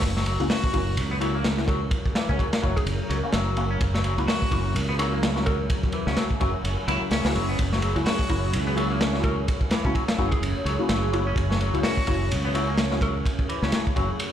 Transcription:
0.02 F#1 F#3 C#4 E4 G#4 A#4, kick, ride
0.17 F#3, snare
0.26 F#3, ride
0.40 C#2 A#3 C#4 E4 F#4, ride
0.50 F#4, snare, open hi-hat
0.64 kick
0.73 F#1 A#3 C#4 E4 F#4, kick, ride
0.97 C#2, ride
1.11 B3
1.20 F#3 A#3 C#4 E4 F#4, ride
1.35 A#3
1.44 snare, ride
1.58 A#3 C#4 E4 F#4, snare
1.68 F#3 A#4, kick, ride
1.91 kick, ride
2.06 kick
2.15 E3, snare, ride
2.29 C#2 A#3 C#4 E4 F#4, kick
2.39 F#3, kick, ride
2.53 snare, ride
2.62 F#1 F#3 A#3 C#4 E4 F#4, kick
2.76 G#4, kick, ride
2.86 F#1, ride
3.10 C#2 F#3, ride
3.23 A#3 C#4 E4 F#4
3.33 F#1 F#3, snare, ride
3.57 A#3 C#4 E4 F#4, ride
3.71 C#4
3.81 F#1, kick, ride
3.94 F#3, snare
4.04 F#3, ride
4.18 C#2 A#3 C#4 E4 F#4, ride
4.28 F#4, snare, open hi-hat
4.42 kick
4.51 F#1 A#3 C#4 E4 F#4, kick, ride
4.74 C#2, ride
4.89 B3
4.99 F#3 A#3 C#4 E4 F#4, ride
5.12 A#3
5.23 snare, ride
5.36 A#3 C#4 E4 F#4, snare
5.46 F#3 A#4, kick, ride
5.70 kick, ride
5.83 kick
5.92 E3, ride
6.07 C#2 A#3 C#4 E4 F#4, snare
6.17 F#3, snare, ride
6.31 kick
6.40 F#1 F#3 A#3 C#4 E4 F#4, kick, ride
6.64 F#1, ride
6.88 C#2 A#3 C#4 E4 F#4, ride
7.01 muted fingered electric bass stroke
7.11 C#2 C#4, snare, open hi-hat
7.24 C#2 A#3 C#4 E4 F#4, snare, open hi-hat
7.35 F#1 F#3, ride
7.49 B3
7.59 F#1 C#5, kick, ride
7.73 F#3, snare
7.82 F#3, ride
7.95 C#2 A#3 C#4 E4 F#4, ride
8.06 F#4, snare, open hi-hat
8.19 kick
8.29 F#1 A#3 C#4 E4 F#4, kick, ride
8.53 C#2, ride
8.67 B3
8.77 F#3 A#3 C#4 E4 F#4, ride
8.91 A#3
9.01 snare, ride
9.14 A#3 C#4 E4 F#4, snare
9.23 F#3 A#4, kick, ride
9.48 kick, ride
9.61 kick
9.71 E3, snare, ride
9.85 C#2 A#3 C#4 E4 F#4, kick
9.95 F#3, kick, ride
10.08 snare, ride
10.18 F#1 F#3 A#3 C#4 E4 F#4, kick
10.31 G#4, kick, ride
10.42 F#1, ride
10.65 C#2 F#3, ride
10.79 A#3 C#4 E4 F#4, muted fingered electric bass stroke
10.89 F#1 F#3, snare, ride
11.13 A#3 C#4 E4 F#4, ride
11.27 C#4
11.36 F#1, kick, ride
11.50 F#3, snare
11.60 F#3, ride
11.73 C#2 A#3 C#4 E4 F#4, ride
11.83 F#4, snare, open hi-hat
11.97 kick
12.07 F#1 A#3 C#4 E4 F#4, kick, ride
12.31 C#2, ride
12.45 B3
12.54 F#3 A#3 C#4 E4 F#4, ride
12.69 A#3
12.78 snare, ride
12.91 A#3 C#4 E4 F#4, snare
13.01 F#3 A#4, kick, ride
13.26 kick, ride
13.39 kick
13.49 E3, ride
13.62 C#2 A#3 C#4 E4 F#4, snare
13.72 F#3, snare, ride
13.87 kick
13.96 F#1 F#3 A#3 C#4 E4 F#4, kick, ride
14.20 ride

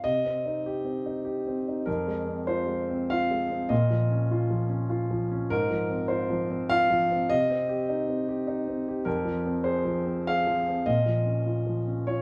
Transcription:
0.04 C3 D#5
0.25 C4
0.46 D#4
0.66 G4
0.85 C4
1.06 D#4
1.25 G4
1.47 C4
1.68 D#4
1.86 F2 A#4
2.08 G#3
2.27 C4
2.47 F4 C5
2.67 G#3
2.89 C4
3.10 F4 F5
3.31 G#3
3.51 C4
3.69 A#2 D#5
3.91 F3
4.11 C#4
4.31 F4
4.50 F3
4.69 C#4
4.90 F4
5.11 F3
5.31 C#4
5.50 G#2 A#4
5.71 F3
5.89 C4
6.08 F4 C5
6.30 F3
6.50 C4
6.69 F4 F5
6.90 F3
7.11 C4
7.30 C3 D#5
7.50 C4
7.69 G4
7.89 D#4
8.08 C4
8.28 G4
8.47 D#4
8.68 C4
8.88 G4
9.05 F2 A#4
9.25 F3
9.45 C4
9.64 G#4 C5
9.85 F3
10.07 C4
10.27 G#4 F5
10.47 F3
10.68 C4
10.86 A#2 D#5
11.06 F3
11.26 C#4
11.46 F4
11.67 F3
11.87 C#4
12.07 F4 C#5

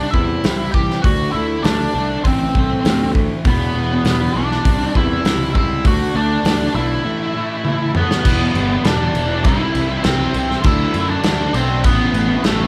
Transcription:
Already playing: C3 G3 C4 D5
0.11 E2 C3 G3 C4 E4 E5, kick
0.42 C2 C3 G3 C4, snare, open hi-hat
0.71 C3 E3 G3 C4 G4 G5, kick
0.90 snare
1.02 D2 D3 A3 D4 F#4 F#5, kick, open hi-hat
1.32 D2 D3 A3 D4 E4 E5
1.63 D2 D3 A3 D4 D5, snare, open hi-hat
1.93 C2 D3 A3 D4
2.24 A1 A2 E3 A3 C4 C5, kick, open hi-hat
2.54 C2 A2 E3 A3, kick
2.84 D2 A2 E3 A3 C4, snare, open hi-hat
3.14 A2 E3 A3, kick
3.44 E1 E2 B2 E3 B3, kick, open hi-hat
3.50 B4
3.75 E1 E2 B2 E3
4.04 E1 E2 B2 E3, snare, open hi-hat
4.35 B1 E2 B2 E3 D4 D5
4.51 snare
4.65 C2 C3 G3 C4, kick, open hi-hat
4.95 E2 C3 G3 C4 E4 E5, kick
5.24 C#2 C3 G3 C4, snare, open hi-hat
5.54 C3 G3 C4 E4 E5, kick
5.84 D2 D3 A3 D4 F#4 F#5, kick, open hi-hat
6.14 D2 D3 A3 D4 D5
6.44 D2 D3 A3 D4, snare, open hi-hat
6.75 B1 D3 A3 D4 E4 E5
7.04 A2 E3 A3
7.34 A2 E3 A3
7.65 A2 E3 A3, high tom
7.94 A2 E3 A3 B3 B4, mid tom
8.11 snare
8.25 E1 E3 G3 B3 E4, kick, crash
8.54 G1 E3 G3 B3 E4, crash
8.84 E1 E3 G3 B3 D4 E4 D5, snare, crash
8.99 G3 B3 E4
9.14 E1 E3 G3 B3 E4, muted distorted electric guitar stroke, crash
9.28 G3 B3 E4, muted distorted electric guitar stroke
9.44 C2 C3 E3 G3 C4 E4 E5, kick, crash
9.59 G3 C4 E4
9.75 C2 E3 G3 C4, crash
9.79 E4
9.89 G3 C4 E4
10.04 C2 C3 E3 G3 C4 E4 C5, snare, crash
10.19 G3 C4 E4
10.34 C2 C3 E3 G3 C4 E4, crash
10.48 G3 C4 E4, snare
10.64 D2 D3 F#3 A3 D4 E4 E5, kick, crash
10.68 F#4
10.93 F#2 D3 F#3 A3 D4, crash
10.97 F#4
11.10 D4 D5
11.22 D2 D3 F#3 A3 D4, snare, crash
11.28 F#4
11.38 F#3 A3 D4 F#4
11.54 B1 D3 A3 C4 C5, muted distorted electric guitar stroke, crash
11.59 D4 F#4
11.68 F#3 A3 D4, muted distorted electric guitar stroke
11.83 A1 A2 E3 A3 B3 C4 E4 B4, kick, crash
11.99 A3 C4 E4
12.14 A1 E3 A3, crash
12.18 C4 E4
12.29 A3 C4 E4
12.43 A1 A2 E3 A3 C4 E4 A4, snare, crash
12.48 A3
12.59 A3 C4 E4

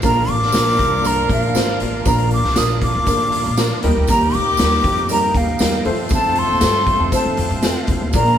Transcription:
0.02 A#1 F3 A#3 D4 F4 A#4 A#5, kick, closed hi-hat, tambourine
0.28 A1 D6, closed hi-hat
0.42 snare
0.52 A#1 F3 A#3 D4 F4 A#4, snare, closed hi-hat, tambourine
0.79 C2, kick, closed hi-hat
1.04 F3 A#3 D4 F4 A#4 A#5, closed hi-hat, tambourine
1.29 A#1 F5, kick, closed hi-hat
1.42 closed hi-hat
1.55 G#1 F3 A#3 D4 F4 C5, snare, closed hi-hat, tambourine
1.80 A1, closed hi-hat
2.05 A#1 F3 A#3 D4 F4 A#4 A#5, kick, closed hi-hat, tambourine
2.18 closed hi-hat
2.31 D6, closed hi-hat
2.44 C2, snare
2.56 A#1 F3 A#3 D4 F4 A#4 D#6, snare, closed hi-hat, tambourine
2.81 D6, kick, closed hi-hat
2.95 D2
3.06 A1 F3 A#3 D4 F4 A#4, kick, closed hi-hat, tambourine
3.32 closed hi-hat
3.44 A#1, closed hi-hat
3.57 F3 A#3 D4 F4 A#4, snare, closed hi-hat, tambourine
3.83 D#2 D#3 G3 A#3 D#4 G4 A#4, closed hi-hat
3.96 D2
4.07 D#2 A#5, kick, closed hi-hat, tambourine
4.21 closed hi-hat
4.34 D2 D6, closed hi-hat
4.57 D#2 G3 A#3 D#4 G4 A#4, snare, closed hi-hat, tambourine
4.72 snare
4.84 F2, kick, closed hi-hat
5.09 G3 A#3 D#4 G4 A#4 A#5, closed hi-hat, tambourine
5.35 D#2 F5, kick, closed hi-hat
5.59 E2 G3 A#3 D#4 G4 A#4, snare, closed hi-hat, tambourine
5.85 F2 F3 A3 C4 F4 A4 C5, open hi-hat
6.09 F2, kick, closed hi-hat, tambourine
6.14 A5
6.23 closed hi-hat
6.35 C6, closed hi-hat
6.49 D#2
6.61 G2 A3 C4 F4 A4 C5, snare, closed hi-hat, tambourine
6.87 kick, closed hi-hat
7.00 F2
7.12 A3 C4 F4 A4 C5 A5, kick, closed hi-hat, tambourine
7.26 F3
7.37 F2, closed hi-hat
7.49 G2, closed hi-hat
7.62 F2 A3 C4 F4 A4 C5, snare, closed hi-hat, tambourine
7.87 F2, kick, closed hi-hat
8.02 D#2
8.13 A#1 F3 A#3 D4 F4 A#4 D5 A#5, kick, closed hi-hat, tambourine
8.26 closed hi-hat

